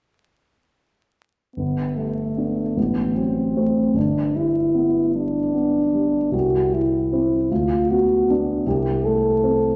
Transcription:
0, 0, Header, 1, 3, 480
1, 0, Start_track
1, 0, Key_signature, 1, "major"
1, 0, Tempo, 811908
1, 922, Time_signature, 6, 3, 24, 8
1, 1399, Tempo, 793651
1, 3799, Tempo, 773196
1, 5925, End_track
2, 0, Start_track
2, 0, Title_t, "French horn"
2, 0, Program_c, 0, 60
2, 922, Note_on_c, 0, 59, 39
2, 1158, Note_on_c, 0, 57, 36
2, 1167, Note_off_c, 0, 59, 0
2, 1645, Note_on_c, 0, 59, 39
2, 1654, Note_off_c, 0, 57, 0
2, 1882, Note_on_c, 0, 60, 41
2, 1891, Note_off_c, 0, 59, 0
2, 2366, Note_on_c, 0, 62, 43
2, 2375, Note_off_c, 0, 60, 0
2, 2605, Note_on_c, 0, 64, 45
2, 2614, Note_off_c, 0, 62, 0
2, 3083, Note_off_c, 0, 64, 0
2, 3086, Note_on_c, 0, 62, 53
2, 3787, Note_off_c, 0, 62, 0
2, 3798, Note_on_c, 0, 66, 47
2, 4048, Note_on_c, 0, 64, 41
2, 4058, Note_off_c, 0, 66, 0
2, 4526, Note_on_c, 0, 65, 50
2, 4535, Note_off_c, 0, 64, 0
2, 4767, Note_on_c, 0, 66, 50
2, 4776, Note_off_c, 0, 65, 0
2, 5072, Note_off_c, 0, 66, 0
2, 5247, Note_on_c, 0, 67, 50
2, 5487, Note_on_c, 0, 69, 59
2, 5496, Note_off_c, 0, 67, 0
2, 5925, Note_off_c, 0, 69, 0
2, 5925, End_track
3, 0, Start_track
3, 0, Title_t, "Grand piano"
3, 0, Program_c, 1, 0
3, 929, Note_on_c, 1, 31, 34
3, 1035, Control_c, 1, 64, 127
3, 1167, Note_on_c, 1, 55, 21
3, 1403, Note_on_c, 1, 59, 25
3, 1408, Note_on_c, 1, 62, 24
3, 1547, Note_off_c, 1, 55, 0
3, 1618, Note_off_c, 1, 59, 0
3, 1621, Note_off_c, 1, 62, 0
3, 1622, Note_off_c, 1, 31, 0
3, 1641, Note_on_c, 1, 33, 29
3, 1652, Control_c, 1, 64, 0
3, 1734, Control_c, 1, 64, 127
3, 1876, Note_on_c, 1, 54, 26
3, 2122, Note_on_c, 1, 57, 26
3, 2126, Note_on_c, 1, 60, 28
3, 2261, Note_off_c, 1, 54, 0
3, 2336, Note_off_c, 1, 57, 0
3, 2337, Note_off_c, 1, 33, 0
3, 2339, Note_off_c, 1, 60, 0
3, 2351, Note_on_c, 1, 31, 35
3, 2371, Control_c, 1, 64, 0
3, 2483, Control_c, 1, 64, 127
3, 2598, Note_on_c, 1, 55, 24
3, 2837, Note_on_c, 1, 59, 27
3, 2984, Note_off_c, 1, 55, 0
3, 3077, Note_on_c, 1, 55, 27
3, 3223, Note_off_c, 1, 59, 0
3, 3315, Note_on_c, 1, 59, 27
3, 3462, Note_off_c, 1, 55, 0
3, 3555, Note_on_c, 1, 55, 29
3, 3701, Note_off_c, 1, 59, 0
3, 3771, Note_off_c, 1, 31, 0
3, 3787, Note_on_c, 1, 36, 34
3, 3796, Note_off_c, 1, 55, 0
3, 3808, Control_c, 1, 64, 0
3, 3923, Control_c, 1, 64, 127
3, 4037, Note_on_c, 1, 55, 25
3, 4289, Note_on_c, 1, 60, 26
3, 4293, Note_on_c, 1, 64, 29
3, 4424, Note_off_c, 1, 55, 0
3, 4495, Note_off_c, 1, 36, 0
3, 4503, Note_off_c, 1, 60, 0
3, 4505, Note_off_c, 1, 64, 0
3, 4530, Note_on_c, 1, 38, 37
3, 4533, Control_c, 1, 64, 0
3, 4621, Control_c, 1, 64, 127
3, 4775, Note_on_c, 1, 59, 31
3, 5007, Note_off_c, 1, 59, 0
3, 5017, Note_on_c, 1, 59, 31
3, 5021, Note_on_c, 1, 62, 33
3, 5218, Note_off_c, 1, 38, 0
3, 5222, Note_off_c, 1, 59, 0
3, 5225, Note_off_c, 1, 62, 0
3, 5246, Note_on_c, 1, 36, 41
3, 5248, Control_c, 1, 64, 0
3, 5354, Control_c, 1, 64, 127
3, 5489, Note_on_c, 1, 57, 27
3, 5724, Note_on_c, 1, 60, 31
3, 5868, Note_off_c, 1, 57, 0
3, 5925, Note_off_c, 1, 36, 0
3, 5925, Note_off_c, 1, 60, 0
3, 5925, End_track
0, 0, End_of_file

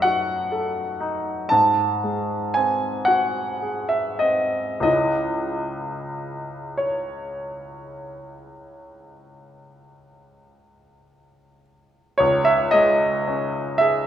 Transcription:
0, 0, Header, 1, 2, 480
1, 0, Start_track
1, 0, Key_signature, 4, "minor"
1, 0, Tempo, 975610
1, 744, Tempo, 1056338
1, 1704, Tempo, 1226994
1, 2184, Time_signature, 12, 3, 24, 8
1, 2184, Tempo, 1290323
1, 3144, Tempo, 1192843
1, 5064, Tempo, 1060071
1, 5909, End_track
2, 0, Start_track
2, 0, Title_t, "Grand piano"
2, 0, Program_c, 0, 0
2, 0, Control_c, 0, 64, 127
2, 0, Note_on_c, 0, 42, 44
2, 0, Note_on_c, 0, 57, 37
2, 0, Note_on_c, 0, 63, 36
2, 0, Note_on_c, 0, 75, 65
2, 0, Note_on_c, 0, 76, 73
2, 11, Note_on_c, 0, 78, 76
2, 23, Note_on_c, 0, 66, 40
2, 162, Note_off_c, 0, 63, 0
2, 255, Note_on_c, 0, 69, 36
2, 396, Note_off_c, 0, 66, 0
2, 494, Note_on_c, 0, 63, 37
2, 642, Note_off_c, 0, 69, 0
2, 721, Note_off_c, 0, 42, 0
2, 733, Note_on_c, 0, 81, 74
2, 737, Note_off_c, 0, 78, 0
2, 744, Note_off_c, 0, 63, 0
2, 746, Note_on_c, 0, 44, 44
2, 750, Control_c, 0, 64, 0
2, 754, Note_off_c, 0, 75, 0
2, 754, Note_off_c, 0, 76, 0
2, 755, Note_off_c, 0, 57, 0
2, 830, Control_c, 0, 64, 127
2, 982, Note_on_c, 0, 56, 34
2, 1211, Note_on_c, 0, 80, 62
2, 1213, Note_off_c, 0, 81, 0
2, 1225, Note_on_c, 0, 60, 34
2, 1359, Note_off_c, 0, 56, 0
2, 1443, Note_on_c, 0, 78, 69
2, 1451, Note_off_c, 0, 80, 0
2, 1455, Note_on_c, 0, 66, 35
2, 1606, Note_off_c, 0, 60, 0
2, 1703, Note_on_c, 0, 68, 31
2, 1807, Note_on_c, 0, 76, 56
2, 1813, Note_off_c, 0, 78, 0
2, 1842, Note_off_c, 0, 66, 0
2, 1925, Note_on_c, 0, 75, 57
2, 1931, Note_off_c, 0, 76, 0
2, 1935, Note_on_c, 0, 60, 29
2, 2083, Note_off_c, 0, 68, 0
2, 2165, Note_on_c, 0, 37, 36
2, 2168, Note_off_c, 0, 75, 0
2, 2169, Note_on_c, 0, 56, 27
2, 2170, Note_off_c, 0, 44, 0
2, 2174, Note_on_c, 0, 61, 25
2, 2174, Note_on_c, 0, 75, 62
2, 2179, Note_on_c, 0, 64, 27
2, 2184, Note_off_c, 0, 60, 0
2, 2193, Control_c, 0, 64, 0
2, 2272, Control_c, 0, 64, 127
2, 2899, Note_on_c, 0, 73, 47
2, 2905, Note_off_c, 0, 75, 0
2, 4824, Note_off_c, 0, 73, 0
2, 5038, Note_off_c, 0, 37, 0
2, 5040, Note_off_c, 0, 56, 0
2, 5043, Note_off_c, 0, 61, 0
2, 5045, Note_off_c, 0, 64, 0
2, 5053, Note_on_c, 0, 73, 70
2, 5062, Note_on_c, 0, 37, 49
2, 5072, Control_c, 0, 64, 0
2, 5145, Control_c, 0, 64, 127
2, 5174, Note_on_c, 0, 76, 76
2, 5180, Note_off_c, 0, 73, 0
2, 5293, Note_on_c, 0, 75, 76
2, 5302, Note_off_c, 0, 76, 0
2, 5304, Note_on_c, 0, 56, 40
2, 5549, Note_on_c, 0, 61, 37
2, 5693, Note_off_c, 0, 56, 0
2, 5778, Note_on_c, 0, 76, 76
2, 5782, Note_off_c, 0, 75, 0
2, 5790, Note_on_c, 0, 68, 42
2, 5909, Note_off_c, 0, 37, 0
2, 5909, Note_off_c, 0, 61, 0
2, 5909, Note_off_c, 0, 68, 0
2, 5909, Note_off_c, 0, 76, 0
2, 5909, End_track
0, 0, End_of_file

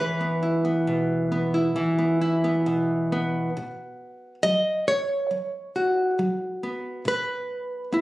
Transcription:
0, 0, Header, 1, 2, 480
1, 0, Start_track
1, 0, Tempo, 887574
1, 1907, Time_signature, 4, 2, 24, 8
1, 3344, Tempo, 872093
1, 4349, End_track
2, 0, Start_track
2, 0, Title_t, "Nylon-string guitar"
2, 0, Program_c, 0, 24
2, 0, Note_on_c, 0, 52, 65
2, 0, Note_on_c, 0, 71, 83
2, 112, Note_on_c, 0, 59, 40
2, 231, Note_on_c, 0, 64, 46
2, 341, Note_off_c, 0, 59, 0
2, 350, Note_on_c, 0, 59, 43
2, 472, Note_on_c, 0, 47, 60
2, 699, Note_off_c, 0, 59, 0
2, 712, Note_on_c, 0, 59, 41
2, 818, Note_off_c, 0, 64, 0
2, 834, Note_on_c, 0, 64, 39
2, 932, Note_off_c, 0, 52, 0
2, 941, Note_off_c, 0, 47, 0
2, 950, Note_on_c, 0, 52, 69
2, 1064, Note_off_c, 0, 59, 0
2, 1073, Note_on_c, 0, 59, 41
2, 1186, Note_off_c, 0, 64, 0
2, 1198, Note_on_c, 0, 64, 42
2, 1308, Note_off_c, 0, 59, 0
2, 1320, Note_on_c, 0, 59, 39
2, 1440, Note_on_c, 0, 47, 56
2, 1677, Note_off_c, 0, 59, 0
2, 1689, Note_on_c, 0, 59, 42
2, 1888, Note_off_c, 0, 47, 0
2, 1888, Note_off_c, 0, 52, 0
2, 1890, Note_off_c, 0, 64, 0
2, 1911, Note_off_c, 0, 71, 0
2, 1929, Note_on_c, 0, 47, 58
2, 2348, Note_off_c, 0, 47, 0
2, 2396, Note_on_c, 0, 75, 84
2, 2402, Note_on_c, 0, 54, 51
2, 2629, Note_off_c, 0, 75, 0
2, 2639, Note_on_c, 0, 73, 88
2, 2825, Note_off_c, 0, 54, 0
2, 2870, Note_on_c, 0, 54, 55
2, 3114, Note_on_c, 0, 66, 38
2, 3299, Note_off_c, 0, 54, 0
2, 3348, Note_on_c, 0, 54, 58
2, 3585, Note_off_c, 0, 59, 0
2, 3592, Note_on_c, 0, 59, 43
2, 3779, Note_off_c, 0, 54, 0
2, 3800, Note_off_c, 0, 66, 0
2, 3821, Note_on_c, 0, 47, 61
2, 3832, Note_off_c, 0, 73, 0
2, 3838, Note_on_c, 0, 71, 84
2, 4254, Note_off_c, 0, 47, 0
2, 4296, Note_off_c, 0, 59, 0
2, 4303, Note_on_c, 0, 59, 56
2, 4309, Note_on_c, 0, 64, 41
2, 4349, Note_off_c, 0, 59, 0
2, 4349, Note_off_c, 0, 64, 0
2, 4349, Note_off_c, 0, 71, 0
2, 4349, End_track
0, 0, End_of_file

